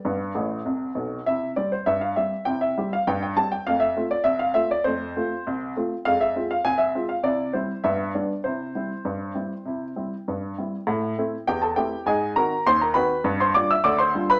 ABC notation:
X:1
M:2/4
L:1/16
Q:1/4=100
K:C
V:1 name="Upright piano"
d4 z4 | e2 d c e f e2 | g e2 f g g a g | f e2 d e f e d |
c6 z2 | f e2 f _a e2 f | d2 c2 e2 d2 | c8- |
c6 z2 | z4 [Gg] [Aa] [Gg]2 | [_A_e_a]2 [_B_b]2 [cc'] [Bb] [=Bg=b]2- | [Bgb] [cc'] [dd'] [ee'] [dd'] [cc']2 [Bb] |]
V:2 name="Upright piano"
[G,,B,]2 [A,,,A,,]2 [C,,C,]2 [B,,,B,,]2 | [C,E]2 [G,CG]2 G,,2 [G,CG]2 | [C,E]2 [G,CG]2 G,,2 [G,CG]2 | [F,,A,]2 [A,CF]2 C,,2 [A,CF]2 |
[F,,A,]2 [A,CF]2 C,,2 [A,CF]2 | [F,,_A,]2 [A,CF]2 C,,2 [A,CF]2 | [C,E]2 [G,CE]2 [G,,B,]2 [G,B,D]2 | [C,E]2 [G,CE]2 G,,2 [G,CE]2 |
[C,E]2 [G,CE]2 G,,2 [G,CE]2 | A,,2 [A,CE]2 E,,2 [A,CE]2 | _A,,2 [_E,C_G]2 _E,,2 [E,CG]2 | G,,2 [G,DF]2 D,,2 [G,DF]2 |]